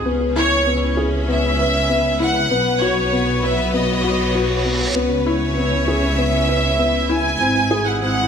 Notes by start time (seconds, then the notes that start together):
Already playing: G#4
0.05 C#2 B3 C#4
0.27 B4
0.36 E4 C#5
0.66 B3
0.97 G#4
1.17 E5
1.28 B3 E5
1.59 B4
1.89 B3
2.20 E4 F#5
2.51 B1 B3
2.82 F#4 C#5
3.05 F#4
3.12 B3
3.39 B4 C#5 E5
3.73 B3 D#5, reverse cymbal
4.04 F#4
4.35 F#4
4.65 B3
4.95 C#2 B3 C#4
5.26 E4 C#5
5.45 E5
5.53 E4
5.57 B3
5.88 G#4
6.17 B3 E5
6.48 B4
6.79 B3
7.09 E4 G#5
7.40 G#1 G#3 C4
7.71 G#4
7.87 F#5
8.01 C4 D#4 C5 F#5